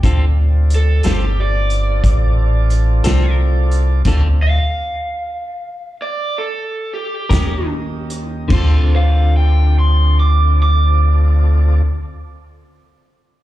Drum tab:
CC |------------|x-----------|x-----------|
HH |x-xx-xx-xx-x|x--------x-x|------------|
SD |---o-----o--|---------o--|------------|
BD |o-----o-----|o--------o--|o-----------|